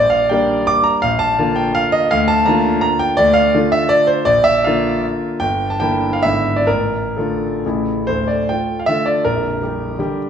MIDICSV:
0, 0, Header, 1, 2, 480
1, 0, Start_track
1, 0, Tempo, 381679
1, 859, Tempo, 357995
1, 1315, Time_signature, 3, 2, 24, 8
1, 5659, Tempo, 382653
1, 7099, Tempo, 408441
1, 8059, Tempo, 443131
1, 8539, Tempo, 483092
1, 9499, Tempo, 431965
1, 9979, Tempo, 407886
1, 10939, Tempo, 365631
1, 12792, End_track
2, 0, Start_track
2, 0, Title_t, "Grand piano"
2, 0, Program_c, 0, 0
2, 0, Note_on_c, 0, 34, 75
2, 0, Note_on_c, 0, 74, 122
2, 94, Control_c, 0, 64, 127
2, 124, Note_on_c, 0, 77, 100
2, 133, Note_off_c, 0, 74, 0
2, 369, Note_on_c, 0, 79, 92
2, 372, Note_off_c, 0, 34, 0
2, 375, Note_off_c, 0, 77, 0
2, 392, Note_on_c, 0, 55, 70
2, 393, Note_on_c, 0, 58, 72
2, 397, Note_on_c, 0, 62, 76
2, 842, Note_on_c, 0, 86, 124
2, 854, Note_off_c, 0, 79, 0
2, 878, Control_c, 0, 64, 0
2, 1064, Note_on_c, 0, 82, 102
2, 1081, Note_off_c, 0, 86, 0
2, 1267, Note_off_c, 0, 55, 0
2, 1268, Note_off_c, 0, 58, 0
2, 1270, Note_off_c, 0, 62, 0
2, 1302, Note_off_c, 0, 82, 0
2, 1310, Note_on_c, 0, 77, 122
2, 1331, Note_on_c, 0, 34, 79
2, 1517, Control_c, 0, 64, 127
2, 1538, Note_on_c, 0, 81, 126
2, 1542, Note_off_c, 0, 77, 0
2, 1781, Note_off_c, 0, 34, 0
2, 1803, Note_on_c, 0, 50, 68
2, 1804, Note_on_c, 0, 65, 73
2, 1808, Note_on_c, 0, 58, 75
2, 2031, Note_on_c, 0, 79, 97
2, 2033, Note_off_c, 0, 81, 0
2, 2280, Note_off_c, 0, 79, 0
2, 2285, Note_on_c, 0, 77, 127
2, 2297, Control_c, 0, 64, 0
2, 2522, Note_on_c, 0, 75, 118
2, 2525, Note_off_c, 0, 77, 0
2, 2712, Note_off_c, 0, 50, 0
2, 2712, Note_off_c, 0, 65, 0
2, 2715, Note_off_c, 0, 58, 0
2, 2756, Note_off_c, 0, 75, 0
2, 2770, Note_on_c, 0, 77, 127
2, 2782, Note_on_c, 0, 38, 97
2, 2997, Note_on_c, 0, 81, 126
2, 3000, Note_off_c, 0, 77, 0
2, 3005, Control_c, 0, 64, 127
2, 3236, Note_on_c, 0, 82, 106
2, 3240, Note_off_c, 0, 38, 0
2, 3244, Note_off_c, 0, 81, 0
2, 3258, Note_on_c, 0, 50, 78
2, 3265, Note_on_c, 0, 58, 72
2, 3280, Note_on_c, 0, 65, 82
2, 3694, Note_off_c, 0, 82, 0
2, 3714, Note_on_c, 0, 82, 127
2, 3746, Control_c, 0, 64, 0
2, 3957, Note_on_c, 0, 79, 116
2, 3963, Note_off_c, 0, 82, 0
2, 4164, Note_off_c, 0, 50, 0
2, 4168, Note_off_c, 0, 58, 0
2, 4175, Note_off_c, 0, 65, 0
2, 4191, Note_on_c, 0, 74, 127
2, 4202, Note_off_c, 0, 79, 0
2, 4216, Note_on_c, 0, 38, 91
2, 4415, Note_on_c, 0, 77, 121
2, 4439, Control_c, 0, 64, 127
2, 4440, Note_off_c, 0, 74, 0
2, 4689, Note_off_c, 0, 38, 0
2, 4695, Note_on_c, 0, 50, 74
2, 4702, Note_on_c, 0, 57, 70
2, 4704, Note_on_c, 0, 65, 76
2, 4719, Control_c, 0, 64, 0
2, 4929, Note_on_c, 0, 76, 111
2, 4933, Note_off_c, 0, 77, 0
2, 5158, Note_on_c, 0, 74, 123
2, 5179, Note_off_c, 0, 76, 0
2, 5402, Note_on_c, 0, 72, 98
2, 5409, Note_off_c, 0, 74, 0
2, 5603, Note_off_c, 0, 50, 0
2, 5607, Note_off_c, 0, 57, 0
2, 5608, Note_off_c, 0, 65, 0
2, 5644, Note_on_c, 0, 74, 119
2, 5649, Note_off_c, 0, 72, 0
2, 5663, Note_on_c, 0, 34, 84
2, 5879, Note_on_c, 0, 76, 119
2, 5882, Note_off_c, 0, 74, 0
2, 5910, Control_c, 0, 64, 127
2, 6124, Note_off_c, 0, 34, 0
2, 6132, Note_off_c, 0, 76, 0
2, 6135, Note_on_c, 0, 77, 98
2, 6157, Note_on_c, 0, 50, 63
2, 6163, Note_on_c, 0, 58, 68
2, 6167, Note_on_c, 0, 65, 79
2, 6632, Note_off_c, 0, 77, 0
2, 6646, Control_c, 0, 64, 0
2, 7060, Note_off_c, 0, 50, 0
2, 7063, Note_off_c, 0, 58, 0
2, 7065, Note_off_c, 0, 65, 0
2, 7082, Note_on_c, 0, 79, 117
2, 7101, Note_on_c, 0, 31, 74
2, 7349, Control_c, 0, 64, 127
2, 7432, Note_off_c, 0, 79, 0
2, 7440, Note_on_c, 0, 81, 89
2, 7549, Note_off_c, 0, 31, 0
2, 7554, Note_on_c, 0, 79, 102
2, 7562, Note_off_c, 0, 81, 0
2, 7568, Note_on_c, 0, 50, 62
2, 7571, Note_on_c, 0, 58, 66
2, 7572, Note_on_c, 0, 64, 71
2, 7932, Note_off_c, 0, 79, 0
2, 7945, Note_on_c, 0, 77, 89
2, 8016, Note_off_c, 0, 50, 0
2, 8018, Note_off_c, 0, 58, 0
2, 8018, Note_off_c, 0, 64, 0
2, 8057, Note_on_c, 0, 76, 111
2, 8065, Note_off_c, 0, 77, 0
2, 8069, Note_on_c, 0, 32, 68
2, 8071, Control_c, 0, 64, 0
2, 8078, Note_on_c, 0, 59, 49
2, 8079, Note_on_c, 0, 50, 51
2, 8088, Note_on_c, 0, 64, 52
2, 8254, Control_c, 0, 64, 127
2, 8414, Note_off_c, 0, 76, 0
2, 8423, Note_on_c, 0, 74, 91
2, 8506, Note_off_c, 0, 59, 0
2, 8507, Note_off_c, 0, 50, 0
2, 8511, Note_off_c, 0, 64, 0
2, 8530, Note_off_c, 0, 32, 0
2, 8538, Note_on_c, 0, 70, 97
2, 8544, Note_off_c, 0, 74, 0
2, 8552, Note_on_c, 0, 33, 66
2, 8555, Control_c, 0, 64, 0
2, 8782, Control_c, 0, 64, 127
2, 9020, Note_off_c, 0, 33, 0
2, 9027, Note_off_c, 0, 70, 0
2, 9033, Note_on_c, 0, 69, 60
2, 9043, Note_on_c, 0, 50, 55
2, 9056, Note_on_c, 0, 57, 55
2, 9057, Note_on_c, 0, 65, 55
2, 9468, Note_off_c, 0, 50, 0
2, 9474, Note_off_c, 0, 57, 0
2, 9475, Note_off_c, 0, 65, 0
2, 9516, Control_c, 0, 64, 0
2, 9518, Note_on_c, 0, 33, 70
2, 9520, Note_on_c, 0, 49, 51
2, 9529, Note_on_c, 0, 57, 50
2, 9538, Note_on_c, 0, 64, 53
2, 9712, Control_c, 0, 64, 127
2, 9750, Note_off_c, 0, 69, 0
2, 9945, Note_off_c, 0, 49, 0
2, 9950, Note_off_c, 0, 57, 0
2, 9954, Note_off_c, 0, 64, 0
2, 9975, Note_off_c, 0, 33, 0
2, 9980, Note_on_c, 0, 72, 101
2, 9990, Control_c, 0, 64, 0
2, 9996, Note_on_c, 0, 26, 59
2, 10000, Note_on_c, 0, 38, 64
2, 10207, Control_c, 0, 64, 127
2, 10215, Note_off_c, 0, 72, 0
2, 10221, Note_on_c, 0, 74, 78
2, 10452, Note_off_c, 0, 26, 0
2, 10454, Note_off_c, 0, 38, 0
2, 10461, Note_off_c, 0, 74, 0
2, 10474, Control_c, 0, 64, 0
2, 10475, Note_on_c, 0, 79, 95
2, 10491, Note_on_c, 0, 57, 44
2, 10499, Note_on_c, 0, 65, 47
2, 10832, Note_off_c, 0, 79, 0
2, 10833, Note_on_c, 0, 77, 73
2, 10911, Note_off_c, 0, 57, 0
2, 10913, Note_on_c, 0, 76, 109
2, 10915, Note_off_c, 0, 65, 0
2, 10937, Note_on_c, 0, 50, 56
2, 10940, Note_on_c, 0, 57, 57
2, 10946, Note_off_c, 0, 77, 0
2, 10946, Note_on_c, 0, 65, 58
2, 11165, Note_on_c, 0, 74, 87
2, 11175, Note_off_c, 0, 76, 0
2, 11374, Note_off_c, 0, 50, 0
2, 11376, Note_off_c, 0, 57, 0
2, 11379, Note_off_c, 0, 65, 0
2, 11412, Note_off_c, 0, 74, 0
2, 11412, Note_on_c, 0, 70, 95
2, 11425, Note_on_c, 0, 34, 61
2, 11427, Note_on_c, 0, 22, 64
2, 11628, Control_c, 0, 64, 127
2, 11886, Note_off_c, 0, 34, 0
2, 11887, Note_off_c, 0, 22, 0
2, 11902, Note_on_c, 0, 55, 47
2, 11913, Note_on_c, 0, 67, 56
2, 12339, Note_off_c, 0, 55, 0
2, 12345, Note_off_c, 0, 67, 0
2, 12386, Note_on_c, 0, 50, 64
2, 12391, Note_on_c, 0, 55, 64
2, 12396, Control_c, 0, 64, 0
2, 12399, Note_on_c, 0, 67, 65
2, 12617, Note_off_c, 0, 70, 0
2, 12792, Note_off_c, 0, 50, 0
2, 12792, Note_off_c, 0, 55, 0
2, 12792, Note_off_c, 0, 67, 0
2, 12792, End_track
0, 0, End_of_file